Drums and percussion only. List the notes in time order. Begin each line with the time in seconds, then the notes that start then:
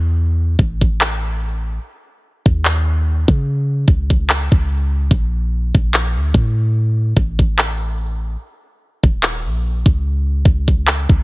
0.59 kick
0.81 kick
1.01 clap
2.46 kick
2.65 clap
3.28 kick
3.88 kick
4.10 kick
4.30 clap
4.52 kick
5.11 kick
5.75 kick
5.94 clap
6.34 kick
7.17 kick
7.39 kick
7.59 clap
9.03 kick
9.23 clap
9.86 kick
10.45 kick
10.68 kick
10.87 clap
11.09 kick